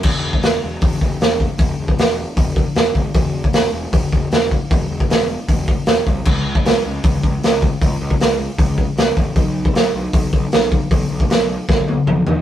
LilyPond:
<<
  \new Staff \with { instrumentName = "Picked electric bass" } { \clef bass \time 4/4 \key b \mixolydian \tempo 4 = 155 e,,4 e,,8 e,,8 e,,8 e,,8 e,,4 | e,,8 e,,8 e,,4 e,,4 e,,8 gis,,8 | e,,4 e,,8 e,,8 e,,8 e,,8 e,,4 | e,,8 e,,8 e,,4 e,,4 e,,8 c,8 |
cis,4 cis,8 cis,8 cis,8 cis,8 cis,4 | cis,8 cis,8 cis,4 cis,4 cis,8 a,,8 | b,,4 b,,8 b,,8 b,,8 b,,8 b,,4 | b,,8 b,,8 b,,4 b,,4 b,,8 dis,8 | }
  \new DrumStaff \with { instrumentName = "Drums" } \drummode { \time 4/4 <cymc bd>8. bd16 <hho sn>4 <hho bd>8 bd8 <hho sn>8 bd8 | <hho bd>8. bd16 <hho sn>4 <hho bd>8 bd8 <hho sn>8 bd8 | <hho bd>8. bd16 <hho sn>4 <hho bd>8 bd8 <hho sn>8 bd8 | <hho bd>8. bd16 <hho sn>4 <hho bd>8 bd8 <hho sn>8 bd8 |
<cymc bd>8. bd16 <hho sn>4 <hho bd>8 bd8 <hho sn>8 bd8 | <hho bd>8. bd16 <hho sn>4 <hho bd>8 bd8 <hho sn>8 bd8 | <hho bd>8. bd16 <hho sn>4 <hho bd>8 bd8 <hho sn>8 bd8 | <hho bd>8. bd16 <hho sn>4 <bd sn>8 tommh8 toml8 tomfh8 | }
>>